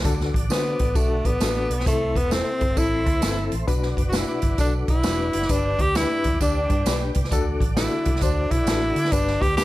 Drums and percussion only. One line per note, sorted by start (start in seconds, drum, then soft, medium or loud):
0.05 kick loud
0.05 closed hi-hat medium
0.05 tambourine medium
0.20 snare soft
0.34 kick medium
0.34 closed hi-hat medium
0.50 snare loud
0.50 closed hi-hat medium
0.50 tambourine medium
0.79 kick medium
0.79 closed hi-hat medium
0.95 kick medium
0.95 closed hi-hat medium
0.95 tambourine medium
1.25 kick medium
1.25 closed hi-hat medium
1.40 snare loud
1.40 closed hi-hat medium
1.40 tambourine medium
1.71 closed hi-hat medium
1.80 snare soft
1.86 kick loud
1.86 closed hi-hat medium
1.86 tambourine medium
2.16 kick medium
2.16 closed hi-hat medium
2.31 snare loud
2.31 closed hi-hat medium
2.31 tambourine medium
2.61 kick medium
2.61 closed hi-hat medium
2.77 kick medium
2.77 closed hi-hat medium
2.77 tambourine medium
3.06 kick medium
3.06 closed hi-hat medium
3.22 snare loud
3.22 closed hi-hat medium
3.22 tambourine medium
3.52 closed hi-hat medium
3.68 kick loud
3.68 closed hi-hat medium
3.68 tambourine medium
3.83 snare soft
3.97 kick medium
3.97 closed hi-hat medium
4.13 snare loud
4.13 closed hi-hat medium
4.13 tambourine medium
4.42 kick medium
4.42 closed hi-hat medium
4.58 kick medium
4.58 closed hi-hat medium
4.58 tambourine medium
4.88 kick medium
4.88 closed hi-hat medium
5.03 snare loud
5.03 closed hi-hat medium
5.03 tambourine medium
5.33 closed hi-hat medium
5.42 snare soft
5.49 kick medium
5.49 closed hi-hat medium
5.49 tambourine medium
5.79 kick medium
5.79 closed hi-hat medium
5.95 snare loud
5.95 closed hi-hat medium
5.95 tambourine medium
6.24 kick medium
6.24 closed hi-hat medium
6.40 kick medium
6.40 closed hi-hat medium
6.40 tambourine medium
6.70 kick medium
6.70 closed hi-hat medium
6.86 snare loud
6.86 closed hi-hat medium
6.86 tambourine medium
7.14 kick medium
7.14 closed hi-hat medium
7.24 snare soft
7.31 kick loud
7.31 closed hi-hat medium
7.31 tambourine medium
7.60 kick medium
7.60 closed hi-hat medium
7.77 snare loud
7.77 closed hi-hat medium
7.77 tambourine medium
8.05 kick medium
8.05 closed hi-hat medium
8.16 snare soft
8.21 kick medium
8.21 closed hi-hat medium
8.21 tambourine medium
8.51 kick medium
8.51 closed hi-hat medium
8.67 snare loud
8.67 closed hi-hat medium
8.67 tambourine medium
8.96 closed hi-hat medium
9.05 snare soft
9.12 kick loud
9.12 closed hi-hat medium
9.12 tambourine medium
9.27 snare soft
9.42 kick medium
9.42 closed hi-hat medium
9.58 snare loud
9.58 closed hi-hat medium
9.58 tambourine medium